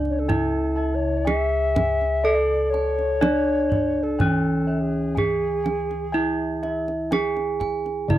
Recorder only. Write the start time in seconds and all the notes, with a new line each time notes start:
0.10 C#5
0.19 A4
0.95 C#5
1.18 E5
2.35 D5
2.70 C#5
4.03 A4
4.70 A4
4.80 G#4